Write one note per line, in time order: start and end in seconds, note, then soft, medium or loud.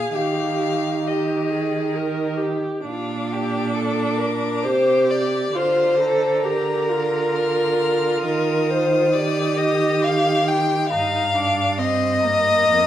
0.00 0.15 G#4 medium
0.00 0.16 G#4 medium
0.00 0.12 F5 medium
0.13 2.59 D#3 soft
0.13 0.95 G4 soft
0.13 1.03 G4 soft
0.13 1.09 F5 medium
1.04 1.52 G4 soft
1.04 2.61 G4 soft
1.04 2.41 D#5 soft
1.50 1.97 G#4 soft
1.95 2.39 A#4 soft
2.37 2.84 G4 soft
2.85 4.66 A#2 soft
2.85 4.66 D4 medium
2.85 3.34 F4 soft
2.85 5.52 D6 soft
3.32 3.75 G4 medium
3.75 4.19 A4 soft
4.18 4.65 A#4 soft
4.63 5.54 C3 soft
4.63 5.56 G4 medium
4.63 5.12 C5 medium
5.10 5.57 D5 medium
5.55 8.21 D3 soft
5.55 5.99 F4 soft
5.55 6.45 C5 medium
5.55 6.02 C6 soft
5.99 6.46 A4 soft
5.99 7.37 A#5 soft
6.45 6.91 G4 soft
6.45 8.22 A#4 medium
6.89 9.14 F4 soft
7.35 8.25 F6 soft
8.25 10.93 D#3 soft
8.25 8.72 A#4 medium
8.25 10.03 D#6 soft
8.70 9.15 C5 medium
9.12 10.90 G4 medium
9.12 9.59 D5 medium
9.57 10.05 D#5 medium
10.02 10.49 F5 medium
10.02 10.93 C6 soft
10.48 10.89 G5 medium
10.90 12.68 G2 medium
10.90 11.35 D#4 medium
10.90 11.78 F5 medium
10.90 11.37 A#5 soft
11.35 11.80 D4 medium
11.35 11.81 D6 soft
11.79 12.26 C4 medium
11.79 12.87 D#5 medium
11.79 12.23 C6 soft
12.24 12.87 A#3 medium
12.24 12.87 A#5 medium
12.69 12.87 F2 medium